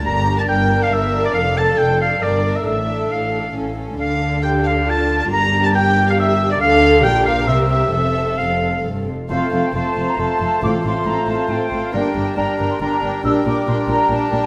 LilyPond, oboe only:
\new Staff \with { instrumentName = "Oboe" } { \time 3/4 \key g \dorian \tempo 4 = 137 bes''8. a''16 g''8. f''16 e''8. d''16 | f''8 a''8 g''8 f''8 d''8. e''16 | e''4 f''4 r4 | f''4 g''8 f''8 a''8. a''16 |
bes''8. a''16 g''8. f''16 e''8. d''16 | \key f \major f''4 g''8 f''8 e''8 e''8 | e''4 f''4 r4 | c''4 c''4 c''4 |
c''2. | bes'4 bes'4 bes'4 | bes'2. | }